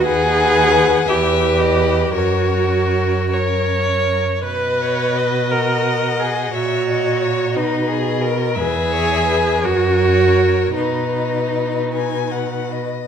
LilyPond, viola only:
\new Staff \with { instrumentName = "Viola" } { \time 6/8 \key b \major \tempo 4. = 56 gis'4. g'4. | fis'4. cis''4. | b'4. ais'4 gis'8 | fis'4. dis'8 r4 |
gis'4. fis'4. | dis'2~ dis'8 r8 | }